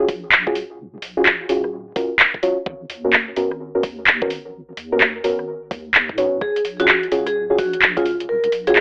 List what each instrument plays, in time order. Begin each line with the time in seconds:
0.09 wobble bass A#1, kick, open hi-hat
0.32 clap
0.47 wobble bass D#1, synth stab C#4 F4 F#4 G#4, kick
0.55 open hi-hat
0.79 wobble bass D#1
1.02 wobble bass A#1, open hi-hat
1.17 synth stab C#4 F4 F#4 G#4
1.26 clap
1.49 wobble bass D#1, synth stab C#4 F4 F#4 G#4, open hi-hat
1.64 cross-stick
1.96 synth stab C#4 F4 F#4 A#4, kick, open hi-hat
2.19 clap
2.34 kick
2.43 synth stab C#4 F4 F#4 C#5, open hi-hat
2.66 wobble bass G#1, kick
2.90 wobble bass D#2, open hi-hat
3.05 synth stab B3 C#4 F#4 A#4
3.13 clap
3.36 wobble bass G#1, synth stab B3 C#4 F#4 A#4, open hi-hat
3.51 cross-stick
3.75 synth stab B3 C#4 F#4 A#4
3.83 wobble bass D#2, kick, open hi-hat
4.07 clap
4.22 wobble bass G#1, synth stab B3 C#4 F#4 A#4, kick
4.30 open hi-hat
4.54 wobble bass G#1
4.77 wobble bass D#2, open hi-hat
4.92 synth stab B3 C#4 F#4 A#4
5.01 clap
5.24 wobble bass G#1, synth stab B3 C#4 F#4 A#4, open hi-hat
5.39 cross-stick
5.71 wobble bass D#2, kick, open hi-hat
5.94 clap
6.09 wobble bass G#2, kick
6.18 synth stab B3 C#4 F#4 C#5, open hi-hat
6.41 wobble bass D#1, vibraphone G#4, kick
6.56 closed hi-hat
6.65 wobble bass A#1, open hi-hat
6.80 synth stab C#4 F4 F#4 G#4, vibraphone F#4, closed hi-hat
6.88 clap
7.03 closed hi-hat
7.12 wobble bass D#1, synth stab C#4 F4 F#4 G#4, open hi-hat
7.27 vibraphone G#4, cross-stick, closed hi-hat
7.50 synth stab C#4 F4 F#4 G#4
7.58 wobble bass A#1, vibraphone F#4, kick, open hi-hat
7.73 closed hi-hat
7.82 clap
7.97 wobble bass D#1, synth stab C#4 F4 F#4 G#4, vibraphone F4, kick, closed hi-hat
8.05 open hi-hat
8.20 closed hi-hat
8.29 wobble bass D#1, vibraphone A#4
8.44 closed hi-hat
8.52 wobble bass A#1, open hi-hat
8.67 synth stab C#4 F4 F#4 G#4, vibraphone G#4, closed hi-hat
8.76 clap